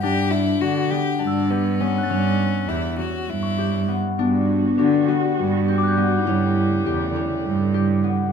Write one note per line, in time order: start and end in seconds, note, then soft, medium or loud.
0.00 0.58 G2 medium
0.00 0.91 B3 medium
0.00 2.16 D4 medium
0.00 0.68 G4 medium
0.00 0.32 G4 medium
0.00 0.29 G6 medium
0.31 0.62 E4 medium
0.61 0.90 D3 medium
0.61 0.92 F#4 medium
0.61 1.57 F#4 medium
0.90 1.80 B3 medium
0.90 1.21 G4 medium
1.19 2.06 G2 medium
1.19 1.52 D4 medium
1.27 2.36 E6 soft
1.51 1.82 B3 medium
1.51 2.68 G4 medium
1.80 3.88 B3 medium
1.80 2.70 C#4 medium
1.98 2.37 F#6 soft
2.03 2.39 A6 soft
2.09 2.65 G2 medium
2.09 2.98 C#4 medium
2.68 2.97 E2 medium
2.68 2.99 E4 medium
2.68 3.58 G4 medium
2.99 4.25 C#4 medium
2.99 3.31 F#4 medium
3.29 4.15 G2 medium
3.29 3.97 E4 medium
3.43 4.45 C#6 medium
3.58 4.85 G4 medium
3.88 5.08 B3 medium
4.19 4.75 G2 medium
4.19 8.29 G3 medium
4.19 4.81 B3 medium
4.19 6.25 B3 medium
4.19 6.33 D4 medium
4.19 6.25 F#4 medium
4.78 5.07 D3 medium
4.78 5.09 D4 medium
4.78 5.74 F#4 medium
5.08 5.97 B3 medium
5.08 6.23 F#4 medium
5.39 6.23 G2 medium
5.68 6.86 G4 medium
5.78 6.53 D6 medium
5.84 6.55 F#6 soft
5.88 6.58 G6 soft
5.97 8.03 B3 medium
6.18 6.26 D#4 medium
6.25 6.83 G2 medium
6.25 8.32 C#3 medium
6.25 8.32 A3 medium
6.25 7.15 C#4 medium
6.25 8.28 E4 medium
6.86 7.14 E2 medium
6.86 7.74 G4 medium
7.16 8.32 C#4 medium
7.46 8.29 G2 medium
7.74 8.32 G4 medium
8.04 8.32 B3 medium